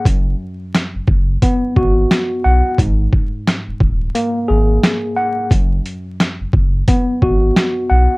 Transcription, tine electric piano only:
X:1
M:4/4
L:1/8
Q:"Swing 16ths" 1/4=88
K:F#mix
V:1 name="Tine electric piano"
F,,4 B, F2 f | G,,4 A, G2 f | F,,4 B, F2 f |]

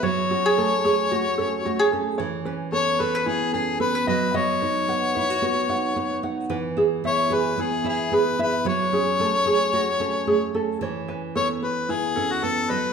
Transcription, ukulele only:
X:1
M:4/4
L:1/16
Q:"Swing 16ths" 1/4=111
K:Alyd
V:1 name="Ukulele"
c2 F G A2 G2 F2 A2 F G A2 | c2 B2 A2 A B E2 A2 A B d2 | d2 B2 f2 B2 F2 f2 B2 f2 | B2 G2 e2 G2 E2 e2 G2 e2 |
c2 G2 A2 G2 F2 A2 G2 A2 | c2 B2 A2 B2 E2 A2 B2 d2 |]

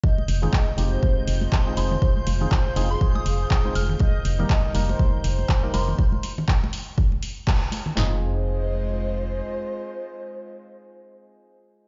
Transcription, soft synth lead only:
X:1
M:4/4
L:1/16
Q:"Swing 16ths" 1/4=121
K:Fm
V:1 name="Soft synth lead"
e2 z2 e2 z c2 z c4- c z | c2 z2 c2 z A2 z A4- A z | e2 z2 e2 z c2 z c4- c z | z16 |
c16- | c16 |]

